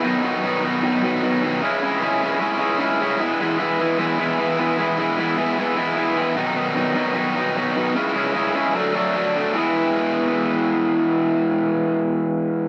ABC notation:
X:1
M:4/4
L:1/8
Q:1/4=151
K:E
V:1 name="Overdriven electric guitar" clef=bass
[B,,D,F,B,D] [B,,D,F,B,D] [B,,D,F,B,D] [B,,D,F,B,D] [B,,D,F,B,D] [B,,D,F,B,D] [B,,D,F,B,D] [B,,D,F,B,D] | [C,G,CE] [C,G,CE] [C,G,CE] [C,G,CE] [C,G,CE] [C,G,CE] [C,G,CE] [C,G,CE] | [E,G,B,E] [E,G,B,E] [E,G,B,E] [E,G,B,E] [E,G,B,E] [E,G,B,E] [E,G,B,E] [E,G,B,E] | [E,G,B,E] [E,G,B,E] [E,G,B,E] [E,G,B,E] [E,G,B,E] [E,G,B,E] [E,G,B,E] [E,G,B,E] |
[B,,D,F,B,D] [B,,D,F,B,D] [B,,D,F,B,D] [B,,D,F,B,D] [B,,D,F,B,D] [B,,D,F,B,D] [B,,D,F,B,D] [B,,D,F,B,D] | [C,G,CE] [C,G,CE] [C,G,CE] [C,G,CE] [=D,F,A,=D] [D,F,A,D] [D,F,A,D] [D,F,A,D] | [E,G,B,E]8- | [E,G,B,E]8 |]